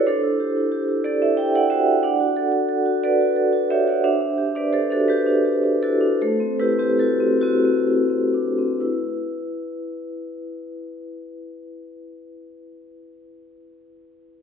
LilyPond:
\new Staff \with { instrumentName = "Vibraphone" } { \time 6/8 \key e \minor \tempo 4. = 52 << { <a' c''>4. <a' d''>16 <c'' e''>16 <e'' g''>16 <d'' fis''>16 <c'' e''>8 | <d'' fis''>4. <b' d''>4 <cis'' e''>16 <d'' fis''>16 | <c'' e''>8. <b' d''>16 <a' c''>16 <fis' a'>16 <g' b'>4 <fis' a'>8 | <a' c''>8 <g' b'>16 <e' g'>16 <fis' a'>8 <c' fis'>4. |
<e' b'>2.~ | <e' b'>2. | } \\ { d'16 e'16 g'16 e'16 g'16 e'16 g'16 e'16 g'16 e'16 fis'16 e'16 | d'16 fis'16 a'16 fis'16 a'16 fis'16 a'16 fis'16 a'16 fis'16 g'16 fis'16 | d'16 d'16 g'16 d'16 g'16 d'8 d'16 g'16 d'16 e'16 d'16 | a16 c'16 e'16 c'16 e'16 c'16 e'16 c'16 e'16 c'16 d'16 c'16 |
r2. | r2. | } >> }